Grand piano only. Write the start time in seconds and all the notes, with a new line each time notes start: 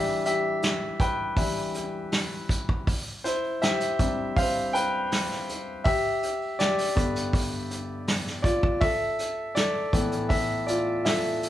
Already playing: E3 G3 D4 G4 E5
0.26 G4 E5
1.00 B4 G5
1.37 E3 G3 D4 G4 E5
3.24 E4 C5
3.62 G4 E5
3.99 C3 G3 D4
4.37 C5 F5
4.73 B4 G5
5.84 G4 E5
6.59 G4 D5
6.95 G2 D3 B3
8.42 F4 D5
8.81 A4 E5
9.55 A4 D5
9.93 A2 E3 B3
10.29 A4 E5
10.67 F4 D5
11.05 A4 E5